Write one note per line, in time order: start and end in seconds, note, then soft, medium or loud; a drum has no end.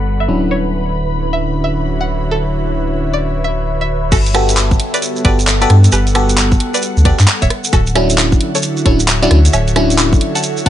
0.00 0.27 G1 medium
0.00 0.28 G3 medium
0.00 0.26 B3 medium
0.00 1.18 B3 medium
0.00 0.26 F#4 medium
0.00 0.26 G4 medium
0.00 0.26 A4 medium
0.00 1.37 A4 medium
0.00 4.13 B4 medium
0.00 1.56 F#5 medium
0.00 4.13 B5 medium
0.20 0.38 E5 medium
0.28 4.10 D1 medium
0.28 5.46 D3 medium
0.28 3.87 F#3 medium
0.28 3.87 C#4 medium
0.28 3.87 D4 medium
0.28 3.87 E4 medium
0.51 0.71 C#5 medium
0.76 4.12 F#4 medium
0.90 5.47 C#5 medium
0.90 5.47 E5 medium
1.33 1.51 E5 medium
1.64 1.84 E5 medium
2.01 2.18 F#5 medium
2.31 2.51 A4 loud
3.13 3.31 D5 medium
3.44 3.64 E5 medium
3.81 3.99 E5 medium
4.12 4.76 G1 medium
4.12 8.65 B3 medium
4.12 4.32 F#4 medium
4.12 4.32 A4 loud
4.12 10.69 A4 medium
4.12 10.69 F#5 medium
4.12 kick loud
4.12 closed hi-hat medium
4.12 crash loud
4.12 high woodblock medium
4.12 shekere medium
4.26 closed hi-hat soft
4.26 shekere soft
4.34 5.23 B3 medium
4.34 5.23 F#4 medium
4.34 5.23 G4 medium
4.34 5.23 A4 loud
4.34 cross-stick medium
4.34 open hi-hat loud
4.34 high woodblock medium
4.49 8.24 A4 loud
4.49 closed hi-hat medium
4.49 shekere medium
4.54 7.50 G3 medium
4.54 clap loud
4.54 shekere medium
4.71 kick loud
4.71 shekere soft
4.80 open hi-hat loud
4.94 5.11 B4 medium
4.94 5.11 D5 medium
4.94 closed hi-hat medium
4.94 shekere medium
5.02 closed hi-hat medium
5.02 shekere medium
5.16 shekere soft
5.25 5.66 G1 medium
5.25 5.39 B3 medium
5.25 5.39 F#4 medium
5.25 5.39 G4 medium
5.25 5.39 A4 medium
5.25 5.44 B4 medium
5.25 5.44 D5 medium
5.25 kick loud
5.25 open hi-hat loud
5.39 closed hi-hat soft
5.39 shekere medium
5.46 8.87 F#5 loud
5.46 clap loud
5.46 shekere medium
5.61 5.78 B3 loud
5.61 5.78 F#4 medium
5.61 5.78 G4 medium
5.61 5.78 A4 loud
5.61 5.79 B4 medium
5.61 5.79 D5 loud
5.61 closed hi-hat medium
5.61 shekere soft
5.70 5.88 G2 medium
5.70 cross-stick medium
5.70 open hi-hat loud
5.84 closed hi-hat medium
5.84 shekere medium
5.92 6.56 G1 loud
5.92 6.12 G4 medium
5.92 6.12 B4 loud
5.92 closed hi-hat medium
5.92 high woodblock medium
5.92 shekere medium
6.07 closed hi-hat soft
6.07 shekere soft
6.15 7.03 B3 medium
6.15 7.03 F#4 medium
6.15 7.03 G4 medium
6.15 7.03 A4 loud
6.15 cross-stick medium
6.15 open hi-hat loud
6.15 high woodblock medium
6.29 closed hi-hat medium
6.29 shekere medium
6.38 clap loud
6.38 shekere medium
6.52 kick loud
6.52 shekere soft
6.60 open hi-hat loud
6.74 6.92 B4 medium
6.74 6.92 D5 medium
6.74 closed hi-hat medium
6.74 shekere medium
6.82 closed hi-hat medium
6.82 shekere medium
6.97 7.11 D2 medium
6.97 shekere soft
7.05 7.19 B3 medium
7.05 7.19 F#4 medium
7.05 7.19 G4 medium
7.05 7.19 A4 medium
7.05 7.25 B4 medium
7.05 7.25 D5 loud
7.05 kick loud
7.05 open hi-hat loud
7.19 7.25 G2 medium
7.19 clap medium
7.19 closed hi-hat soft
7.19 shekere medium
7.27 clap loud
7.27 shekere medium
7.42 7.48 D1 loud
7.42 7.60 C#5 medium
7.42 7.60 E5 medium
7.42 kick medium
7.42 closed hi-hat medium
7.42 shekere soft
7.50 10.69 D3 medium
7.50 cross-stick medium
7.50 open hi-hat loud
7.64 10.69 F#4 medium
7.64 closed hi-hat medium
7.64 shekere medium
7.73 8.37 D1 loud
7.73 7.93 F#4 medium
7.73 7.93 A4 loud
7.73 kick loud
7.73 closed hi-hat medium
7.73 high woodblock medium
7.73 shekere medium
7.83 10.69 E5 medium
7.83 shekere soft
7.87 closed hi-hat soft
7.96 8.84 F#3 loud
7.96 8.84 C#4 medium
7.96 8.84 D4 medium
7.96 8.84 E4 loud
7.96 cross-stick medium
7.96 open hi-hat loud
7.96 high woodblock medium
8.10 closed hi-hat medium
8.10 shekere medium
8.18 clap loud
8.18 shekere medium
8.32 kick loud
8.32 shekere soft
8.41 open hi-hat medium
8.55 8.72 A4 medium
8.55 8.72 C#5 medium
8.55 10.69 C#5 medium
8.55 closed hi-hat medium
8.55 shekere medium
8.62 closed hi-hat medium
8.62 shekere medium
8.77 shekere soft
8.86 9.27 D1 medium
8.86 9.00 F#3 medium
8.86 9.00 C#4 medium
8.86 9.00 D4 medium
8.86 9.00 E4 loud
8.86 9.05 A4 medium
8.86 9.05 C#5 loud
8.86 kick loud
8.86 open hi-hat loud
9.00 closed hi-hat soft
9.00 shekere medium
9.08 clap loud
9.08 shekere medium
9.22 9.39 F#3 loud
9.22 9.39 C#4 medium
9.22 9.39 D4 medium
9.22 9.39 E4 loud
9.22 9.40 F#4 medium
9.22 9.40 D5 medium
9.22 closed hi-hat soft
9.22 shekere soft
9.31 9.49 D2 medium
9.31 cross-stick medium
9.31 open hi-hat medium
9.45 closed hi-hat medium
9.45 shekere medium
9.53 10.17 D1 loud
9.53 9.73 C#5 medium
9.53 9.73 E5 loud
9.53 closed hi-hat medium
9.53 high woodblock medium
9.53 shekere medium
9.68 closed hi-hat soft
9.68 shekere soft
9.76 10.64 F#3 medium
9.76 10.64 C#4 medium
9.76 10.64 D4 medium
9.76 10.64 E4 loud
9.76 cross-stick medium
9.76 open hi-hat loud
9.76 high woodblock medium
9.90 closed hi-hat medium
9.90 shekere medium
9.98 clap loud
9.98 shekere medium
10.13 kick loud
10.13 shekere soft
10.21 open hi-hat medium
10.35 10.53 F#5 medium
10.35 10.53 A5 loud
10.35 closed hi-hat medium
10.35 shekere medium
10.43 closed hi-hat medium
10.43 shekere medium
10.57 shekere soft
10.66 10.69 F#5 medium
10.66 10.69 A5 loud